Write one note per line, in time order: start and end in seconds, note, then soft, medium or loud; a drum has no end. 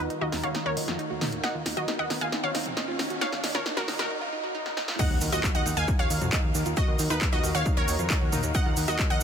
0.00 4.06 D#3 medium
0.00 0.15 D#4 medium
0.00 4.06 D#4 medium
0.00 4.06 F4 medium
0.00 4.06 F#4 medium
0.00 4.06 A#4 medium
0.00 0.15 B4 medium
0.00 riser medium
0.10 0.14 D#4 medium
0.10 closed hi-hat medium
0.21 0.30 D#2 medium
0.21 0.24 F4 medium
0.21 0.38 F#4 medium
0.21 0.38 D#5 medium
0.32 0.41 D#2 medium
0.32 0.39 D#4 medium
0.32 snare medium
0.32 open hi-hat medium
0.43 0.52 D#2 medium
0.43 0.48 F#4 medium
0.43 0.60 C#5 medium
0.43 0.60 F5 medium
0.43 closed hi-hat medium
0.55 0.59 D#4 loud
0.55 snare medium
0.55 closed hi-hat medium
0.66 0.75 D#2 medium
0.66 1.35 A#4 medium
0.66 1.35 C#5 medium
0.77 0.86 D#2 loud
0.77 0.81 D#4 medium
0.77 open hi-hat loud
0.88 0.97 F2 medium
0.88 0.91 F4 medium
0.88 snare medium
0.88 closed hi-hat medium
0.99 1.06 D#4 medium
0.99 closed hi-hat medium
1.10 1.19 D#2 medium
1.10 1.15 F#4 medium
1.21 1.30 D#2 loud
1.21 1.26 D#4 loud
1.21 snare medium
1.21 open hi-hat medium
1.21 mid tom medium
1.32 1.41 D#2 medium
1.32 closed hi-hat medium
1.43 1.48 D#4 medium
1.43 1.68 D#5 medium
1.43 1.68 F#5 loud
1.43 snare medium
1.43 closed hi-hat medium
1.55 1.64 D#2 medium
1.55 1.57 F4 medium
1.66 1.75 D#2 loud
1.66 1.72 D#4 medium
1.66 snare medium
1.66 open hi-hat loud
1.77 1.86 D#2 medium
1.77 1.81 F#4 medium
1.77 1.93 F#4 medium
1.77 1.93 D#5 medium
1.77 closed hi-hat medium
1.88 1.92 D#4 loud
1.88 snare medium
1.88 closed hi-hat medium
1.99 2.08 D#2 medium
1.99 2.15 D#5 medium
1.99 2.15 F#5 medium
2.10 2.19 D#2 loud
2.10 2.15 D#4 medium
2.10 snare medium
2.10 open hi-hat loud
2.21 2.30 D#2 medium
2.21 2.24 F4 medium
2.21 2.38 F5 medium
2.21 2.38 G#5 medium
2.21 closed hi-hat medium
2.32 2.39 D#4 medium
2.32 snare medium
2.32 closed hi-hat medium
2.43 2.52 D#2 medium
2.43 2.48 F#4 medium
2.43 3.12 C#5 medium
2.43 3.12 F5 medium
2.55 2.64 D#2 loud
2.55 2.59 D#4 loud
2.55 snare medium
2.55 open hi-hat loud
2.66 2.75 F2 medium
2.66 closed hi-hat medium
2.66 mid tom medium
2.77 2.81 D#4 medium
2.77 snare medium
2.77 closed hi-hat medium
2.88 2.97 D#2 medium
2.88 2.91 F4 medium
2.99 3.08 D#2 loud
2.99 3.06 D#4 medium
2.99 snare medium
2.99 open hi-hat loud
3.10 3.19 D#2 medium
3.10 3.15 F#4 medium
3.10 closed hi-hat medium
3.21 3.26 D#4 loud
3.21 3.46 C#5 medium
3.21 3.46 F5 loud
3.21 snare medium
3.21 closed hi-hat medium
3.32 3.41 D#2 medium
3.32 snare medium
3.44 3.53 D#2 loud
3.44 3.48 D#4 medium
3.44 snare medium
3.44 open hi-hat loud
3.55 3.64 D#2 loud
3.55 3.57 F4 medium
3.55 3.71 A#4 medium
3.55 3.71 C#5 medium
3.55 snare medium
3.55 closed hi-hat medium
3.66 3.72 D#4 medium
3.66 snare medium
3.66 closed hi-hat medium
3.77 3.86 D#2 medium
3.77 3.93 F#4 medium
3.77 3.81 F#4 medium
3.77 3.93 A#4 medium
3.77 snare medium
3.88 3.97 D#2 loud
3.88 3.92 D#4 loud
3.88 snare loud
3.88 open hi-hat loud
3.99 4.08 D#2 medium
3.99 4.10 F#4 medium
3.99 4.10 A#4 medium
3.99 snare medium
3.99 closed hi-hat medium
4.10 4.15 D#4 medium
4.10 swell medium
4.21 4.24 F4 medium
4.32 4.39 D#4 medium
4.44 4.48 F#4 medium
4.55 4.59 D#4 loud
4.66 snare medium
4.77 4.81 D#4 medium
4.77 snare medium
4.88 4.91 F4 medium
4.88 snare medium
4.99 9.23 D#3 medium
4.99 9.23 D#4 medium
4.99 5.03 D#4 loud
4.99 9.23 F#4 medium
4.99 9.23 A#4 medium
4.99 5.24 D#5 medium
4.99 9.23 F5 medium
4.99 5.24 F#5 loud
4.99 kick loud
4.99 closed hi-hat medium
4.99 crash loud
4.99 impact medium
4.99 shaker soft
5.10 5.19 D#2 medium
5.21 5.30 D#2 loud
5.21 5.26 D#4 medium
5.21 open hi-hat loud
5.21 shaker medium
5.32 5.41 D#2 medium
5.32 5.35 F4 medium
5.32 5.49 F#4 medium
5.32 5.49 D#5 medium
5.32 closed hi-hat medium
5.32 shaker medium
5.44 5.50 D#4 medium
5.44 kick loud
5.44 clap loud
5.44 closed hi-hat medium
5.44 shaker soft
5.55 5.64 D#2 medium
5.55 5.59 F#4 medium
5.55 5.71 D#5 medium
5.55 5.71 F#5 medium
5.66 5.75 D#2 loud
5.66 5.70 D#4 loud
5.66 open hi-hat medium
5.66 shaker medium
5.77 5.86 D#2 medium
5.77 5.93 F5 medium
5.77 5.93 G#5 medium
5.77 closed hi-hat medium
5.77 shaker soft
5.88 5.92 D#4 medium
5.88 kick loud
5.88 closed hi-hat medium
5.88 shaker soft
5.99 6.08 D#2 medium
5.99 6.02 F4 medium
5.99 6.68 C#5 medium
5.99 6.68 F5 medium
5.99 6.68 F5 loud
6.10 6.19 D#2 loud
6.10 6.17 D#4 medium
6.10 open hi-hat loud
6.10 shaker medium
6.21 6.30 F2 medium
6.21 6.26 F#4 medium
6.21 closed hi-hat medium
6.21 mid tom medium
6.21 shaker medium
6.32 6.37 D#4 loud
6.32 kick loud
6.32 clap loud
6.32 closed hi-hat medium
6.32 shaker soft
6.44 6.53 D#2 medium
6.55 6.64 D#2 loud
6.55 6.59 D#4 medium
6.55 open hi-hat medium
6.55 shaker medium
6.65 6.75 D#2 medium
6.65 6.68 F4 medium
6.65 closed hi-hat medium
6.65 shaker medium
6.77 6.83 D#4 medium
6.77 7.01 F#4 medium
6.77 7.01 D#5 loud
6.77 kick loud
6.77 closed hi-hat medium
6.77 shaker soft
6.88 6.97 D#2 medium
6.88 6.92 F#4 medium
6.99 7.08 D#2 loud
6.99 7.03 D#4 loud
6.99 open hi-hat loud
6.99 shaker loud
7.10 7.19 D#2 loud
7.10 7.27 D#4 medium
7.10 7.27 B4 medium
7.10 closed hi-hat medium
7.10 shaker medium
7.21 7.26 D#4 medium
7.21 kick loud
7.21 clap loud
7.21 closed hi-hat medium
7.21 shaker soft
7.32 7.41 D#2 medium
7.32 7.35 F4 medium
7.32 7.49 F#4 medium
7.32 7.49 D#5 medium
7.44 7.53 D#2 medium
7.44 7.50 D#4 medium
7.44 open hi-hat loud
7.44 shaker medium
7.55 7.64 D#2 medium
7.55 7.59 F#4 medium
7.55 7.71 C#5 medium
7.55 7.71 F5 medium
7.55 closed hi-hat medium
7.55 shaker medium
7.66 7.70 D#4 loud
7.66 kick loud
7.66 closed hi-hat medium
7.66 shaker soft
7.77 7.86 D#2 medium
7.77 8.46 A#4 medium
7.77 8.46 C#5 loud
7.88 7.97 D#2 loud
7.88 7.92 D#4 medium
7.88 open hi-hat loud
7.88 shaker loud
7.99 8.08 F2 medium
7.99 8.02 F4 medium
7.99 closed hi-hat medium
7.99 shaker medium
8.10 8.17 D#4 medium
8.10 kick loud
8.10 clap loud
8.10 closed hi-hat medium
8.10 shaker soft
8.21 8.30 D#2 medium
8.21 8.26 F#4 medium
8.32 8.41 D#2 loud
8.32 8.37 D#4 loud
8.32 open hi-hat medium
8.32 mid tom medium
8.32 shaker medium
8.43 8.52 D#2 medium
8.43 closed hi-hat medium
8.43 shaker medium
8.54 8.59 D#4 medium
8.54 8.79 D#5 medium
8.54 8.79 F#5 loud
8.54 kick loud
8.54 closed hi-hat medium
8.54 shaker soft
8.66 8.75 D#2 medium
8.66 8.68 F4 medium
8.77 8.86 D#2 loud
8.77 8.83 D#4 medium
8.77 open hi-hat loud
8.77 shaker medium
8.88 8.97 D#2 medium
8.88 8.92 F#4 medium
8.88 9.04 F#4 medium
8.88 9.04 D#5 medium
8.88 closed hi-hat medium
8.88 shaker medium
8.99 9.03 D#4 loud
8.99 kick loud
8.99 clap loud
8.99 closed hi-hat medium
8.99 shaker soft
9.10 9.19 D#2 medium
9.10 9.23 D#5 medium
9.10 9.23 F#5 medium